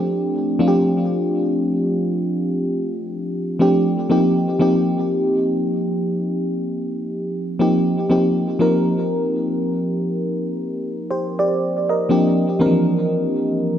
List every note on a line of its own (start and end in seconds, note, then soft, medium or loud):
0.00 0.42 F3 medium
0.00 0.43 A3 medium
0.00 0.43 C4 medium
0.00 0.43 D4 medium
0.00 0.43 G4 loud
0.59 2.20 F3 medium
0.59 2.21 A3 medium
0.59 2.21 C4 medium
0.59 2.21 D4 medium
0.59 0.68 F4 medium
0.68 2.25 G4 loud
3.59 4.01 F3 medium
3.59 4.01 A3 medium
3.59 4.01 C4 medium
3.59 4.02 D4 medium
3.59 4.02 G4 medium
4.10 4.51 F3 medium
4.10 4.51 A#3 medium
4.10 4.51 C4 medium
4.10 4.52 D#4 medium
4.10 4.52 G4 medium
4.59 6.20 F3 medium
4.59 6.21 A#3 medium
4.59 6.21 C4 medium
4.59 6.21 D#4 medium
4.59 6.22 G4 loud
7.59 8.01 F3 medium
7.59 8.01 A#3 medium
7.59 8.01 C4 medium
7.59 8.02 D#4 medium
7.59 8.02 G4 medium
8.10 8.51 F3 medium
8.10 8.51 A#3 medium
8.10 8.51 C4 medium
8.10 8.52 D#4 medium
8.10 8.52 G4 medium
8.59 10.20 F3 medium
8.59 10.21 A#3 medium
8.59 10.21 C4 medium
8.59 10.21 D#4 medium
8.59 10.21 A#4 medium
11.11 11.38 G4 medium
11.11 11.38 C5 medium
11.39 11.87 G4 medium
11.39 11.86 D5 medium
11.89 12.37 A#4 medium
11.89 12.36 D#5 medium
12.09 12.51 F3 medium
12.09 12.51 A#3 medium
12.09 12.51 C4 medium
12.09 12.52 D4 medium
12.09 12.52 G4 medium
12.59 12.67 E3 medium
12.59 13.79 A#3 medium
12.59 13.79 C4 medium
12.59 13.79 D4 medium
12.59 13.79 A#4 medium
12.66 13.79 F3 medium